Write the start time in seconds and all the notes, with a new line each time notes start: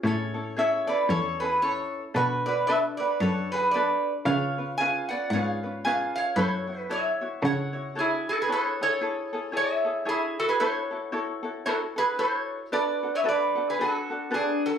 0.03 A2 C#4 E4 G#4 A4 C#5
0.07 A4
0.34 C#4 E4 A4
0.57 C#4 E4 G#4 A4 C#5 E5
0.87 C#4 E4 A4 B4 D5
1.09 E2 C#4 E4 G#4 A4 C#5
1.40 C#4 E4 G#4 A4 B4
1.62 C#4 E4 A4 C#5
2.14 B2 D4 F#4 A4 B4
2.46 D4 F#4 B4 D5
2.67 D4 F#4 A4 B4 E5
2.97 F#4 B4 D5
3.01 D4
3.20 F#2 D4 F#4 A4 B4 C#5
3.52 D4 F#4 G#4 B4
3.71 B4 D5
3.75 D4 F#4 A4 B4
4.26 C#3 C#4 F4 G#4 B4 C#5 F5
4.58 C#4 F4 B4
4.78 C#4 F4 G#4 B4 F5 G#5
5.09 F4 B4 D5 F#5
5.13 C#4
5.30 G#2 G#4 C#5 F5
5.35 C#4 F4 B4
5.63 C#4 F4 B4
5.85 C#4 F4 G#4 B4 F5 G#5
6.16 C#5 F5
6.36 F#2 E4 F#4 A4 C#5
6.67 E4 F#4 C#5
6.80 B4
6.89 E4 F#4 A4 C#5 E5
7.21 E4 F#4 C#5
7.42 C#3 E4 F#4 A4 C#5 F#5
7.46 C#5
7.73 E4 F#4 C#5
7.95 E4 F#4 G#4 A4 C#5
8.00 E4
8.29 F#4 A4
8.42 G#4 B4
8.48 E4 G#4 A4 C#5
8.53 A4
8.81 E4 G#4 A4 C#5
9.01 E4 G#4 A4 C#5
9.33 E4 G#4 A4
9.52 E4 G#4 A4 C#5
9.57 C#5 E5
9.84 E4 G#4 A4
10.05 E4 G#4 A4 C#5
10.09 E4
10.39 F#4 A4
10.49 G#4 B4
10.60 E4 F#4 A4 C#5
10.91 E4 F#4 A4
11.12 E4 F#4 A4 C#5
11.43 E4 F#4 A4
11.65 E4 F#4 A4 C#5
11.96 E4 F#4 G#4 A4 B4
12.19 E4 F#4 A4 C#5
12.72 D4 F#4 A4 B4 D5
13.03 D4 F#4 A4
13.15 C#5 E5
13.24 D4 F#4 A4 B4
13.29 B4 D5
13.55 D4 F#4 A4
13.70 G#4 B4
13.79 D4 F#4 A4 B4
14.10 D4 F#4 A4
14.31 D4 F#4 G#4 A4 B4
14.35 D4
14.66 F#4 A4